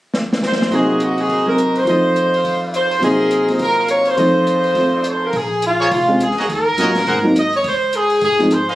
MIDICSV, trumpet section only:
0, 0, Header, 1, 2, 480
1, 0, Start_track
1, 0, Key_signature, -5, "minor"
1, 0, Tempo, 288600
1, 1189, Time_signature, 4, 2, 24, 8
1, 14553, End_track
2, 0, Start_track
2, 0, Title_t, "Trumpet section"
2, 0, Program_c, 0, 61
2, 1182, Note_on_c, 0, 72, 56
2, 1183, Note_on_c, 0, 66, 66
2, 1183, Note_on_c, 0, 70, 61
2, 1184, Note_on_c, 0, 75, 70
2, 2127, Note_off_c, 0, 72, 0
2, 2128, Note_off_c, 0, 70, 0
2, 2147, Note_on_c, 0, 72, 53
2, 2148, Note_on_c, 0, 70, 51
2, 3086, Note_off_c, 0, 72, 0
2, 3087, Note_off_c, 0, 75, 0
2, 3104, Note_on_c, 0, 65, 60
2, 3105, Note_on_c, 0, 69, 58
2, 3106, Note_off_c, 0, 66, 0
2, 3106, Note_on_c, 0, 72, 57
2, 3107, Note_on_c, 0, 75, 69
2, 3108, Note_off_c, 0, 70, 0
2, 3893, Note_off_c, 0, 72, 0
2, 3894, Note_off_c, 0, 75, 0
2, 3911, Note_on_c, 0, 77, 59
2, 3913, Note_on_c, 0, 72, 54
2, 3914, Note_on_c, 0, 75, 52
2, 5004, Note_off_c, 0, 75, 0
2, 5012, Note_off_c, 0, 72, 0
2, 5024, Note_on_c, 0, 75, 77
2, 5026, Note_off_c, 0, 65, 0
2, 5026, Note_off_c, 0, 69, 0
2, 5028, Note_on_c, 0, 70, 68
2, 5030, Note_off_c, 0, 77, 0
2, 5032, Note_on_c, 0, 72, 60
2, 6253, Note_off_c, 0, 75, 0
2, 6257, Note_off_c, 0, 72, 0
2, 6272, Note_on_c, 0, 77, 56
2, 6273, Note_on_c, 0, 75, 51
2, 6277, Note_on_c, 0, 72, 50
2, 6915, Note_off_c, 0, 72, 0
2, 6917, Note_off_c, 0, 75, 0
2, 6934, Note_on_c, 0, 69, 56
2, 6935, Note_on_c, 0, 72, 55
2, 6937, Note_on_c, 0, 65, 60
2, 6937, Note_on_c, 0, 75, 65
2, 6945, Note_off_c, 0, 77, 0
2, 6947, Note_off_c, 0, 70, 0
2, 8172, Note_off_c, 0, 72, 0
2, 8176, Note_off_c, 0, 69, 0
2, 8192, Note_on_c, 0, 72, 58
2, 8196, Note_on_c, 0, 69, 49
2, 8216, Note_on_c, 0, 87, 38
2, 8384, Note_on_c, 0, 84, 39
2, 8459, Note_off_c, 0, 87, 0
2, 8544, Note_on_c, 0, 81, 42
2, 8654, Note_off_c, 0, 84, 0
2, 8706, Note_on_c, 0, 77, 43
2, 8784, Note_off_c, 0, 81, 0
2, 8861, Note_off_c, 0, 65, 0
2, 8861, Note_off_c, 0, 75, 0
2, 8864, Note_off_c, 0, 72, 0
2, 8866, Note_off_c, 0, 69, 0
2, 8944, Note_off_c, 0, 77, 0
2, 9633, Note_on_c, 0, 70, 69
2, 9633, Note_on_c, 0, 72, 69
2, 9635, Note_on_c, 0, 73, 82
2, 9636, Note_on_c, 0, 68, 73
2, 9762, Note_off_c, 0, 70, 0
2, 9763, Note_off_c, 0, 72, 0
2, 9763, Note_off_c, 0, 73, 0
2, 9764, Note_off_c, 0, 68, 0
2, 10594, Note_on_c, 0, 75, 78
2, 10596, Note_on_c, 0, 66, 75
2, 10599, Note_on_c, 0, 70, 66
2, 10599, Note_on_c, 0, 73, 59
2, 10723, Note_off_c, 0, 75, 0
2, 10724, Note_off_c, 0, 66, 0
2, 10726, Note_off_c, 0, 70, 0
2, 10726, Note_off_c, 0, 73, 0
2, 11273, Note_on_c, 0, 75, 82
2, 11274, Note_on_c, 0, 66, 78
2, 11276, Note_on_c, 0, 70, 69
2, 11276, Note_on_c, 0, 73, 74
2, 11466, Note_off_c, 0, 66, 0
2, 11466, Note_off_c, 0, 75, 0
2, 11467, Note_off_c, 0, 73, 0
2, 11468, Note_off_c, 0, 70, 0
2, 11753, Note_on_c, 0, 68, 71
2, 11753, Note_on_c, 0, 70, 64
2, 11753, Note_on_c, 0, 78, 75
2, 11755, Note_on_c, 0, 72, 65
2, 11945, Note_off_c, 0, 70, 0
2, 11945, Note_off_c, 0, 78, 0
2, 11946, Note_off_c, 0, 68, 0
2, 11946, Note_off_c, 0, 72, 0
2, 14433, Note_on_c, 0, 75, 67
2, 14435, Note_on_c, 0, 68, 69
2, 14436, Note_on_c, 0, 71, 67
2, 14437, Note_on_c, 0, 77, 77
2, 14553, Note_off_c, 0, 68, 0
2, 14553, Note_off_c, 0, 71, 0
2, 14553, Note_off_c, 0, 75, 0
2, 14553, Note_off_c, 0, 77, 0
2, 14553, End_track
0, 0, End_of_file